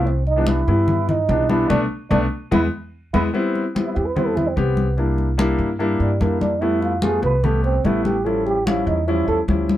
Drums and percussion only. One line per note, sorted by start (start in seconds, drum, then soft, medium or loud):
0.07 high conga soft
0.27 high conga soft
0.47 high conga medium
0.68 high conga soft
0.88 high conga soft
0.88 low conga medium
1.09 high conga soft
1.09 low conga medium
1.29 high conga medium
1.50 high conga medium
1.70 high conga loud
2.11 high conga medium
2.52 high conga loud
3.14 high conga loud
3.35 high conga soft
3.55 high conga soft
3.76 high conga medium
3.96 high conga soft
4.16 high conga soft
4.16 low conga medium
4.37 high conga soft
4.37 low conga medium
4.57 high conga medium
4.77 high conga medium
4.98 high conga soft
5.18 high conga soft
5.39 high conga loud
5.60 high conga soft
5.80 high conga soft
6.00 high conga soft
6.21 high conga medium
6.41 high conga medium
6.62 high conga soft
6.82 high conga soft
7.02 high conga loud
7.23 high conga soft
7.44 high conga soft
7.44 low conga medium
7.64 high conga soft
7.85 high conga medium
8.05 high conga medium
8.26 high conga soft
8.46 high conga soft
8.67 high conga loud
8.88 high conga soft
9.08 high conga soft
9.29 high conga soft
9.49 high conga medium
9.69 high conga medium